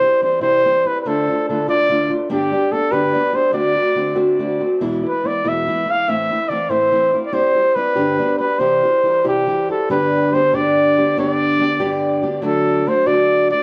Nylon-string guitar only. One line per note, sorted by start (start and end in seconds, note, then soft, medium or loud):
0.01 0.21 G3 soft
0.01 0.22 C4 soft
0.01 0.21 E4 soft
0.21 0.41 E3 medium
0.21 0.40 G3 medium
0.21 0.40 C4 soft
0.21 0.40 E4 soft
0.41 0.65 C3 medium
0.41 0.64 E3 medium
0.41 0.64 G3 medium
0.41 0.64 C4 medium
0.41 0.64 E4 medium
0.65 0.85 E3 soft
0.65 0.85 G3 medium
0.65 0.85 C4 medium
0.65 0.84 E4 medium
0.85 1.05 G3 soft
0.85 1.06 C4 soft
0.85 1.05 E4 soft
1.05 1.28 D3 medium
1.05 1.28 A3 medium
1.05 1.28 D4 medium
1.05 1.27 F4 medium
1.28 1.48 A3 soft
1.28 1.49 D4 soft
1.28 1.48 F4 soft
1.49 1.68 D3 medium
1.49 1.68 A3 medium
1.49 1.67 D4 medium
1.49 1.67 F4 medium
1.68 1.88 D3 medium
1.68 1.88 A3 medium
1.68 1.89 D4 medium
1.68 1.89 F4 medium
1.89 2.10 D3 medium
1.89 2.10 A3 medium
1.89 2.09 D4 medium
1.89 2.08 F4 medium
2.09 2.30 A3 soft
2.09 2.29 D4 soft
2.09 2.30 F4 soft
2.30 2.52 G2 medium
2.30 2.52 D3 medium
2.30 2.52 G3 medium
2.30 2.52 B3 medium
2.30 2.52 D4 medium
2.30 2.51 G4 medium
2.52 2.70 G3 soft
2.52 2.71 B3 soft
2.52 2.71 D4 soft
2.52 2.72 G4 soft
2.72 2.92 G3 medium
2.72 2.92 B3 medium
2.72 2.91 D4 medium
2.72 2.90 G4 medium
2.92 3.15 G2 medium
2.92 3.15 D3 medium
2.92 3.13 G3 medium
2.92 3.13 B3 medium
2.92 3.13 D4 medium
2.92 3.14 G4 medium
3.14 3.33 G3 medium
3.14 3.32 B3 medium
3.14 3.32 D4 medium
3.14 3.32 G4 medium
3.33 3.52 G3 soft
3.33 3.52 B3 soft
3.33 3.53 D4 soft
3.33 3.53 G4 soft
3.52 3.76 D3 medium
3.52 3.76 A3 medium
3.52 3.75 C4 medium
3.52 3.74 F#4 medium
3.75 3.95 A3 soft
3.75 3.95 C4 soft
3.75 3.96 F#4 soft
3.95 4.15 D3 soft
3.95 4.15 A3 medium
3.95 4.15 C4 medium
3.95 4.14 F#4 medium
4.15 4.38 D3 medium
4.15 4.38 A3 medium
4.15 4.39 C4 medium
4.15 4.39 F#4 medium
4.39 4.60 D3 medium
4.39 4.60 A3 medium
4.39 4.59 C4 medium
4.39 4.58 F#4 medium
4.60 4.81 A3 soft
4.60 4.81 C4 soft
4.60 4.81 F#4 soft
4.81 5.04 E2 medium
4.81 5.04 B2 medium
4.81 5.03 E3 medium
4.81 5.03 G#3 medium
4.81 5.02 B3 medium
4.81 5.02 E4 medium
5.03 5.22 E3 soft
5.03 5.23 G#3 soft
5.03 5.24 B3 soft
5.03 5.24 E4 soft
5.24 5.44 E3 medium
5.24 5.43 G#3 medium
5.24 5.43 B3 medium
5.24 5.43 E4 medium
5.44 5.68 E2 medium
5.44 5.68 B2 medium
5.44 5.66 E3 medium
5.44 5.67 G#3 medium
5.44 5.67 B3 medium
5.44 5.67 E4 medium
5.67 5.87 E3 medium
5.67 5.87 G#3 soft
5.67 5.86 B3 medium
5.67 5.85 E4 medium
5.86 6.07 E3 soft
5.86 6.08 G#3 soft
5.86 6.08 B3 soft
5.86 6.07 E4 soft
6.08 6.31 A2 medium
6.08 6.31 E3 medium
6.08 6.31 A3 medium
6.08 6.30 C4 medium
6.08 6.29 E4 medium
6.30 6.49 A3 soft
6.30 6.50 C4 soft
6.30 6.50 E4 medium
6.50 6.69 E3 medium
6.50 6.69 A3 medium
6.50 6.69 C4 medium
6.50 6.68 E4 medium
6.70 6.93 A2 medium
6.70 6.90 E3 medium
6.70 6.91 A3 medium
6.70 6.91 C4 medium
6.70 6.92 E4 medium
6.92 7.12 E3 medium
6.92 7.13 A3 medium
6.92 7.13 C4 medium
6.92 7.12 E4 medium
7.14 7.32 A3 soft
7.14 7.31 C4 soft
7.14 7.32 E4 soft
7.33 7.55 G3 medium
7.33 7.55 C4 medium
7.33 7.54 E4 medium
7.33 7.53 G4 medium
7.54 7.75 C4 soft
7.54 7.76 E4 soft
7.54 7.75 G4 soft
7.76 7.96 G3 medium
7.76 7.96 C4 soft
7.76 7.96 E4 medium
7.76 7.94 G4 medium
7.96 8.19 G2 medium
7.96 8.19 D3 medium
7.96 8.18 G3 medium
7.96 8.18 B3 medium
7.96 8.19 D4 medium
7.96 8.18 G4 medium
8.19 8.39 G3 medium
8.19 8.39 B3 medium
8.19 8.39 D4 medium
8.19 8.39 G4 medium
8.40 8.59 G3 soft
8.40 8.60 B3 soft
8.40 8.60 D4 soft
8.40 8.60 G4 soft
8.60 8.82 C3 medium
8.60 8.83 E3 medium
8.60 8.83 G3 medium
8.60 8.83 E4 medium
8.60 8.82 G4 medium
8.83 9.02 G3 soft
8.83 9.03 E4 soft
8.83 9.03 G4 medium
9.03 9.24 E3 soft
9.03 9.24 G3 soft
9.03 9.23 E4 medium
9.03 9.23 G4 medium
9.24 9.48 C3 medium
9.24 9.45 E3 medium
9.24 9.46 G3 medium
9.24 9.47 E4 medium
9.24 9.47 G4 medium
9.47 9.68 E3 medium
9.47 9.68 G3 medium
9.47 9.69 E4 medium
9.47 9.68 G4 medium
9.69 9.89 G3 soft
9.69 9.90 E4 soft
9.69 9.89 G4 soft
9.90 10.34 G2 medium
9.90 10.54 D3 medium
9.90 10.32 G3 medium
9.90 10.33 B3 medium
9.90 10.34 D4 medium
9.90 10.34 G4 medium
10.33 10.53 G3 soft
10.33 10.53 B3 medium
10.33 10.52 D4 medium
10.33 10.52 G4 medium
10.53 10.98 G2 soft
10.53 11.17 D3 medium
10.53 10.98 G3 medium
10.53 10.98 B3 medium
10.53 10.98 D4 medium
10.53 10.96 G4 medium
10.98 11.17 G3 soft
10.98 11.17 B3 soft
10.98 11.17 D4 soft
10.98 11.17 G4 soft
11.17 11.61 G2 medium
11.17 11.80 D3 medium
11.17 11.59 G3 medium
11.17 11.60 B3 medium
11.17 11.61 D4 medium
11.17 11.61 G4 medium
11.60 11.79 G3 medium
11.60 11.79 B3 medium
11.60 11.78 D4 medium
11.60 11.79 G4 medium
11.80 12.24 G2 medium
11.80 12.41 D3 medium
11.80 12.23 G3 medium
11.80 12.23 B3 medium
11.80 12.23 D4 medium
11.80 12.22 G4 medium
12.23 12.42 G3 soft
12.23 12.42 B3 medium
12.23 12.42 D4 medium
12.23 12.43 G4 medium
12.42 12.86 D3 medium
12.42 12.85 F#3 medium
12.42 12.85 A3 medium
12.42 12.86 D4 medium
12.42 12.86 F#4 medium
12.86 13.06 F#3 medium
12.86 13.05 A3 medium
12.86 13.05 D4 medium
12.86 13.05 F#4 medium
13.06 13.51 D3 medium
13.06 13.51 F#3 medium
13.06 13.50 A3 medium
13.06 13.50 D4 medium
13.06 13.49 F#4 medium
13.51 13.63 A3 soft
13.51 13.63 D4 soft
13.51 13.63 F#4 soft